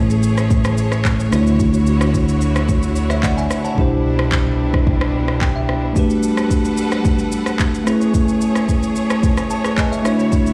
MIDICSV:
0, 0, Header, 1, 5, 480
1, 0, Start_track
1, 0, Tempo, 545455
1, 1405, Time_signature, 4, 2, 24, 8
1, 9267, End_track
2, 0, Start_track
2, 0, Title_t, "Tine electric piano"
2, 0, Program_c, 0, 4
2, 0, Control_c, 0, 64, 127
2, 0, Note_on_c, 0, 57, 74
2, 0, Note_on_c, 0, 61, 72
2, 0, Note_on_c, 0, 64, 67
2, 0, Note_on_c, 0, 68, 66
2, 0, Note_on_c, 0, 71, 82
2, 1117, Note_off_c, 0, 57, 0
2, 1123, Note_off_c, 0, 61, 0
2, 1130, Note_off_c, 0, 64, 0
2, 1137, Note_off_c, 0, 68, 0
2, 1139, Note_on_c, 0, 57, 76
2, 1144, Note_off_c, 0, 71, 0
2, 1153, Note_on_c, 0, 62, 71
2, 1167, Note_on_c, 0, 64, 69
2, 1176, Control_c, 0, 64, 0
2, 1181, Note_on_c, 0, 66, 70
2, 1193, Note_on_c, 0, 73, 85
2, 1336, Control_c, 0, 64, 127
2, 2591, Note_off_c, 0, 73, 0
2, 2731, Note_on_c, 0, 76, 66
2, 2736, Note_on_c, 0, 73, 57
2, 2840, Note_off_c, 0, 76, 0
2, 2842, Note_off_c, 0, 73, 0
2, 2844, Note_on_c, 0, 78, 70
2, 2850, Note_on_c, 0, 74, 61
2, 2963, Note_off_c, 0, 78, 0
2, 2966, Note_off_c, 0, 74, 0
2, 2969, Note_on_c, 0, 80, 70
2, 2974, Note_on_c, 0, 76, 60
2, 3037, Note_off_c, 0, 57, 0
2, 3044, Note_off_c, 0, 62, 0
2, 3051, Note_off_c, 0, 64, 0
2, 3058, Note_off_c, 0, 66, 0
2, 3197, Note_off_c, 0, 80, 0
2, 3200, Note_off_c, 0, 76, 0
2, 3209, Note_on_c, 0, 81, 65
2, 3214, Note_on_c, 0, 78, 55
2, 3297, Note_on_c, 0, 47, 75
2, 3312, Note_on_c, 0, 62, 73
2, 3325, Note_on_c, 0, 64, 71
2, 3337, Control_c, 0, 64, 0
2, 3338, Note_on_c, 0, 67, 70
2, 3353, Note_on_c, 0, 72, 86
2, 3437, Note_off_c, 0, 81, 0
2, 3440, Note_off_c, 0, 78, 0
2, 3494, Control_c, 0, 64, 127
2, 4766, Note_on_c, 0, 79, 73
2, 4881, Note_off_c, 0, 79, 0
2, 4889, Note_on_c, 0, 76, 68
2, 5196, Note_off_c, 0, 47, 0
2, 5203, Note_off_c, 0, 62, 0
2, 5210, Note_off_c, 0, 64, 0
2, 5216, Note_off_c, 0, 67, 0
2, 5218, Note_on_c, 0, 57, 74
2, 5220, Note_off_c, 0, 76, 0
2, 5224, Note_off_c, 0, 72, 0
2, 5232, Note_on_c, 0, 62, 69
2, 5245, Note_on_c, 0, 66, 71
2, 5255, Control_c, 0, 64, 0
2, 5259, Note_on_c, 0, 67, 69
2, 5273, Note_on_c, 0, 71, 83
2, 5405, Control_c, 0, 64, 127
2, 6877, Note_off_c, 0, 57, 0
2, 6885, Note_off_c, 0, 62, 0
2, 6891, Note_off_c, 0, 66, 0
2, 6897, Note_on_c, 0, 57, 75
2, 6898, Note_off_c, 0, 67, 0
2, 6905, Note_off_c, 0, 71, 0
2, 6910, Note_on_c, 0, 60, 53
2, 6923, Note_on_c, 0, 64, 70
2, 6935, Control_c, 0, 64, 0
2, 6937, Note_on_c, 0, 68, 70
2, 6950, Note_on_c, 0, 71, 85
2, 6967, Note_on_c, 0, 61, 69
2, 6977, Note_off_c, 0, 60, 0
2, 7108, Control_c, 0, 64, 127
2, 8107, Note_off_c, 0, 68, 0
2, 8114, Note_off_c, 0, 71, 0
2, 8365, Note_on_c, 0, 81, 73
2, 8490, Note_on_c, 0, 71, 69
2, 8495, Note_on_c, 0, 68, 55
2, 8557, Note_off_c, 0, 57, 0
2, 8570, Note_off_c, 0, 64, 0
2, 8588, Note_off_c, 0, 81, 0
2, 8593, Note_off_c, 0, 61, 0
2, 8600, Note_off_c, 0, 71, 0
2, 8602, Note_off_c, 0, 68, 0
2, 8605, Note_on_c, 0, 80, 72
2, 8606, Note_on_c, 0, 75, 70
2, 8611, Note_on_c, 0, 71, 59
2, 8724, Note_off_c, 0, 75, 0
2, 8727, Note_off_c, 0, 71, 0
2, 8729, Note_on_c, 0, 76, 68
2, 8734, Note_on_c, 0, 73, 55
2, 8817, Note_on_c, 0, 57, 79
2, 8828, Note_off_c, 0, 80, 0
2, 8831, Note_on_c, 0, 62, 70
2, 8833, Note_off_c, 0, 76, 0
2, 8844, Note_on_c, 0, 64, 69
2, 8844, Note_on_c, 0, 76, 77
2, 8856, Control_c, 0, 64, 0
2, 8858, Note_on_c, 0, 66, 69
2, 8861, Note_off_c, 0, 73, 0
2, 8871, Note_on_c, 0, 73, 85
2, 9020, Control_c, 0, 64, 127
2, 9068, Note_off_c, 0, 76, 0
2, 9267, Note_off_c, 0, 57, 0
2, 9267, Note_off_c, 0, 62, 0
2, 9267, Note_off_c, 0, 64, 0
2, 9267, Note_off_c, 0, 66, 0
2, 9267, Note_off_c, 0, 73, 0
2, 9267, End_track
3, 0, Start_track
3, 0, Title_t, "String section"
3, 0, Program_c, 1, 48
3, 0, Note_on_c, 1, 57, 70
3, 0, Note_on_c, 1, 68, 77
3, 0, Note_on_c, 1, 73, 78
3, 1147, Note_off_c, 1, 68, 0
3, 1148, Note_off_c, 1, 57, 0
3, 1167, Note_on_c, 1, 64, 69
3, 1168, Note_on_c, 1, 50, 73
3, 1168, Note_on_c, 1, 66, 83
3, 3291, Note_off_c, 1, 73, 0
3, 3305, Note_off_c, 1, 50, 0
3, 3305, Note_off_c, 1, 66, 0
3, 3323, Note_on_c, 1, 55, 70
3, 3324, Note_on_c, 1, 47, 77
3, 3324, Note_on_c, 1, 62, 73
3, 5211, Note_off_c, 1, 64, 0
3, 5225, Note_off_c, 1, 47, 0
3, 5225, Note_off_c, 1, 55, 0
3, 5225, Note_off_c, 1, 62, 0
3, 5244, Note_on_c, 1, 55, 78
3, 5244, Note_on_c, 1, 69, 71
3, 5244, Note_on_c, 1, 71, 84
3, 5244, Note_on_c, 1, 78, 73
3, 6908, Note_off_c, 1, 55, 0
3, 6908, Note_off_c, 1, 69, 0
3, 6908, Note_off_c, 1, 71, 0
3, 6908, Note_off_c, 1, 78, 0
3, 6925, Note_on_c, 1, 68, 76
3, 6926, Note_on_c, 1, 57, 66
3, 6926, Note_on_c, 1, 73, 81
3, 8826, Note_off_c, 1, 57, 0
3, 8826, Note_off_c, 1, 68, 0
3, 8847, Note_on_c, 1, 64, 69
3, 8847, Note_on_c, 1, 66, 85
3, 8848, Note_on_c, 1, 50, 80
3, 9267, Note_off_c, 1, 50, 0
3, 9267, Note_off_c, 1, 64, 0
3, 9267, Note_off_c, 1, 66, 0
3, 9267, Note_off_c, 1, 73, 0
3, 9267, End_track
4, 0, Start_track
4, 0, Title_t, "Fingered electric bass"
4, 0, Program_c, 2, 33
4, 0, Note_on_c, 2, 33, 83
4, 1130, Note_off_c, 2, 33, 0
4, 1166, Note_on_c, 2, 38, 82
4, 3050, Note_off_c, 2, 38, 0
4, 3324, Note_on_c, 2, 36, 81
4, 5209, Note_off_c, 2, 36, 0
4, 9267, End_track
5, 0, Start_track
5, 0, Title_t, "Drums"
5, 90, Note_on_c, 9, 82, 61
5, 178, Note_off_c, 9, 82, 0
5, 202, Note_on_c, 9, 82, 79
5, 290, Note_off_c, 9, 82, 0
5, 329, Note_on_c, 9, 82, 49
5, 331, Note_on_c, 9, 37, 93
5, 417, Note_off_c, 9, 82, 0
5, 419, Note_off_c, 9, 37, 0
5, 444, Note_on_c, 9, 82, 71
5, 445, Note_on_c, 9, 36, 114
5, 532, Note_off_c, 9, 82, 0
5, 533, Note_off_c, 9, 36, 0
5, 568, Note_on_c, 9, 82, 58
5, 570, Note_on_c, 9, 37, 96
5, 656, Note_off_c, 9, 82, 0
5, 658, Note_off_c, 9, 37, 0
5, 682, Note_on_c, 9, 82, 95
5, 770, Note_off_c, 9, 82, 0
5, 807, Note_on_c, 9, 37, 87
5, 810, Note_on_c, 9, 82, 49
5, 895, Note_off_c, 9, 37, 0
5, 898, Note_off_c, 9, 82, 0
5, 923, Note_on_c, 9, 39, 86
5, 925, Note_on_c, 9, 36, 90
5, 926, Note_on_c, 9, 82, 65
5, 1011, Note_off_c, 9, 39, 0
5, 1013, Note_off_c, 9, 36, 0
5, 1014, Note_off_c, 9, 82, 0
5, 1055, Note_on_c, 9, 82, 51
5, 1143, Note_off_c, 9, 82, 0
5, 1166, Note_on_c, 9, 37, 95
5, 1166, Note_on_c, 9, 82, 84
5, 1254, Note_off_c, 9, 37, 0
5, 1254, Note_off_c, 9, 82, 0
5, 1291, Note_on_c, 9, 82, 52
5, 1379, Note_off_c, 9, 82, 0
5, 1404, Note_on_c, 9, 82, 77
5, 1405, Note_on_c, 9, 36, 105
5, 1492, Note_off_c, 9, 82, 0
5, 1493, Note_off_c, 9, 36, 0
5, 1529, Note_on_c, 9, 82, 60
5, 1617, Note_off_c, 9, 82, 0
5, 1642, Note_on_c, 9, 82, 89
5, 1730, Note_off_c, 9, 82, 0
5, 1768, Note_on_c, 9, 37, 99
5, 1770, Note_on_c, 9, 82, 53
5, 1856, Note_off_c, 9, 37, 0
5, 1858, Note_off_c, 9, 82, 0
5, 1884, Note_on_c, 9, 36, 92
5, 1886, Note_on_c, 9, 82, 76
5, 1972, Note_off_c, 9, 36, 0
5, 1974, Note_off_c, 9, 82, 0
5, 2010, Note_on_c, 9, 82, 60
5, 2098, Note_off_c, 9, 82, 0
5, 2122, Note_on_c, 9, 82, 82
5, 2210, Note_off_c, 9, 82, 0
5, 2249, Note_on_c, 9, 82, 49
5, 2252, Note_on_c, 9, 37, 96
5, 2337, Note_off_c, 9, 82, 0
5, 2340, Note_off_c, 9, 37, 0
5, 2364, Note_on_c, 9, 82, 73
5, 2365, Note_on_c, 9, 36, 116
5, 2452, Note_off_c, 9, 82, 0
5, 2453, Note_off_c, 9, 36, 0
5, 2488, Note_on_c, 9, 82, 55
5, 2576, Note_off_c, 9, 82, 0
5, 2603, Note_on_c, 9, 82, 99
5, 2691, Note_off_c, 9, 82, 0
5, 2727, Note_on_c, 9, 37, 90
5, 2730, Note_on_c, 9, 82, 47
5, 2815, Note_off_c, 9, 37, 0
5, 2818, Note_off_c, 9, 82, 0
5, 2844, Note_on_c, 9, 36, 94
5, 2844, Note_on_c, 9, 39, 80
5, 2847, Note_on_c, 9, 82, 66
5, 2932, Note_off_c, 9, 36, 0
5, 2932, Note_off_c, 9, 39, 0
5, 2935, Note_off_c, 9, 82, 0
5, 2975, Note_on_c, 9, 82, 50
5, 3063, Note_off_c, 9, 82, 0
5, 3085, Note_on_c, 9, 37, 93
5, 3085, Note_on_c, 9, 82, 80
5, 3173, Note_off_c, 9, 37, 0
5, 3173, Note_off_c, 9, 82, 0
5, 3210, Note_on_c, 9, 82, 49
5, 3298, Note_off_c, 9, 82, 0
5, 3324, Note_on_c, 9, 36, 108
5, 3412, Note_off_c, 9, 36, 0
5, 3687, Note_on_c, 9, 37, 98
5, 3775, Note_off_c, 9, 37, 0
5, 3803, Note_on_c, 9, 36, 90
5, 3803, Note_on_c, 9, 39, 102
5, 3891, Note_off_c, 9, 36, 0
5, 3891, Note_off_c, 9, 39, 0
5, 4169, Note_on_c, 9, 36, 95
5, 4170, Note_on_c, 9, 37, 93
5, 4257, Note_off_c, 9, 36, 0
5, 4258, Note_off_c, 9, 37, 0
5, 4284, Note_on_c, 9, 36, 118
5, 4372, Note_off_c, 9, 36, 0
5, 4411, Note_on_c, 9, 37, 96
5, 4499, Note_off_c, 9, 37, 0
5, 4648, Note_on_c, 9, 37, 89
5, 4736, Note_off_c, 9, 37, 0
5, 4764, Note_on_c, 9, 36, 92
5, 4765, Note_on_c, 9, 39, 83
5, 4852, Note_off_c, 9, 36, 0
5, 4853, Note_off_c, 9, 39, 0
5, 5006, Note_on_c, 9, 37, 88
5, 5094, Note_off_c, 9, 37, 0
5, 5245, Note_on_c, 9, 36, 105
5, 5245, Note_on_c, 9, 82, 75
5, 5333, Note_off_c, 9, 36, 0
5, 5333, Note_off_c, 9, 82, 0
5, 5369, Note_on_c, 9, 82, 55
5, 5457, Note_off_c, 9, 82, 0
5, 5483, Note_on_c, 9, 82, 93
5, 5571, Note_off_c, 9, 82, 0
5, 5609, Note_on_c, 9, 37, 96
5, 5611, Note_on_c, 9, 82, 48
5, 5697, Note_off_c, 9, 37, 0
5, 5699, Note_off_c, 9, 82, 0
5, 5724, Note_on_c, 9, 36, 90
5, 5726, Note_on_c, 9, 82, 81
5, 5812, Note_off_c, 9, 36, 0
5, 5814, Note_off_c, 9, 82, 0
5, 5850, Note_on_c, 9, 82, 61
5, 5938, Note_off_c, 9, 82, 0
5, 5961, Note_on_c, 9, 82, 83
5, 6049, Note_off_c, 9, 82, 0
5, 6087, Note_on_c, 9, 82, 46
5, 6089, Note_on_c, 9, 37, 93
5, 6175, Note_off_c, 9, 82, 0
5, 6177, Note_off_c, 9, 37, 0
5, 6202, Note_on_c, 9, 82, 72
5, 6204, Note_on_c, 9, 36, 120
5, 6290, Note_off_c, 9, 82, 0
5, 6292, Note_off_c, 9, 36, 0
5, 6326, Note_on_c, 9, 82, 57
5, 6414, Note_off_c, 9, 82, 0
5, 6442, Note_on_c, 9, 82, 100
5, 6530, Note_off_c, 9, 82, 0
5, 6566, Note_on_c, 9, 37, 89
5, 6569, Note_on_c, 9, 82, 49
5, 6654, Note_off_c, 9, 37, 0
5, 6657, Note_off_c, 9, 82, 0
5, 6683, Note_on_c, 9, 39, 82
5, 6684, Note_on_c, 9, 36, 95
5, 6686, Note_on_c, 9, 82, 65
5, 6771, Note_off_c, 9, 39, 0
5, 6772, Note_off_c, 9, 36, 0
5, 6774, Note_off_c, 9, 82, 0
5, 6815, Note_on_c, 9, 82, 50
5, 6903, Note_off_c, 9, 82, 0
5, 6925, Note_on_c, 9, 37, 92
5, 6925, Note_on_c, 9, 82, 82
5, 7013, Note_off_c, 9, 37, 0
5, 7013, Note_off_c, 9, 82, 0
5, 7051, Note_on_c, 9, 82, 52
5, 7139, Note_off_c, 9, 82, 0
5, 7164, Note_on_c, 9, 36, 109
5, 7164, Note_on_c, 9, 82, 79
5, 7252, Note_off_c, 9, 36, 0
5, 7252, Note_off_c, 9, 82, 0
5, 7289, Note_on_c, 9, 82, 58
5, 7377, Note_off_c, 9, 82, 0
5, 7402, Note_on_c, 9, 82, 96
5, 7490, Note_off_c, 9, 82, 0
5, 7528, Note_on_c, 9, 37, 94
5, 7530, Note_on_c, 9, 82, 49
5, 7616, Note_off_c, 9, 37, 0
5, 7618, Note_off_c, 9, 82, 0
5, 7643, Note_on_c, 9, 36, 86
5, 7646, Note_on_c, 9, 82, 79
5, 7731, Note_off_c, 9, 36, 0
5, 7734, Note_off_c, 9, 82, 0
5, 7770, Note_on_c, 9, 82, 59
5, 7858, Note_off_c, 9, 82, 0
5, 7882, Note_on_c, 9, 82, 84
5, 7970, Note_off_c, 9, 82, 0
5, 8009, Note_on_c, 9, 82, 51
5, 8011, Note_on_c, 9, 37, 99
5, 8097, Note_off_c, 9, 82, 0
5, 8099, Note_off_c, 9, 37, 0
5, 8124, Note_on_c, 9, 36, 122
5, 8124, Note_on_c, 9, 82, 71
5, 8212, Note_off_c, 9, 36, 0
5, 8212, Note_off_c, 9, 82, 0
5, 8247, Note_on_c, 9, 82, 55
5, 8250, Note_on_c, 9, 37, 91
5, 8335, Note_off_c, 9, 82, 0
5, 8338, Note_off_c, 9, 37, 0
5, 8361, Note_on_c, 9, 82, 96
5, 8449, Note_off_c, 9, 82, 0
5, 8487, Note_on_c, 9, 37, 89
5, 8490, Note_on_c, 9, 82, 50
5, 8575, Note_off_c, 9, 37, 0
5, 8578, Note_off_c, 9, 82, 0
5, 8604, Note_on_c, 9, 36, 92
5, 8604, Note_on_c, 9, 39, 84
5, 8607, Note_on_c, 9, 82, 68
5, 8692, Note_off_c, 9, 36, 0
5, 8692, Note_off_c, 9, 39, 0
5, 8695, Note_off_c, 9, 82, 0
5, 8735, Note_on_c, 9, 82, 52
5, 8823, Note_off_c, 9, 82, 0
5, 8845, Note_on_c, 9, 37, 94
5, 8845, Note_on_c, 9, 82, 83
5, 8933, Note_off_c, 9, 37, 0
5, 8933, Note_off_c, 9, 82, 0
5, 8971, Note_on_c, 9, 82, 49
5, 9059, Note_off_c, 9, 82, 0
5, 9083, Note_on_c, 9, 82, 76
5, 9084, Note_on_c, 9, 36, 107
5, 9171, Note_off_c, 9, 82, 0
5, 9172, Note_off_c, 9, 36, 0
5, 9208, Note_on_c, 9, 82, 58
5, 9267, Note_off_c, 9, 82, 0
5, 9267, End_track
0, 0, End_of_file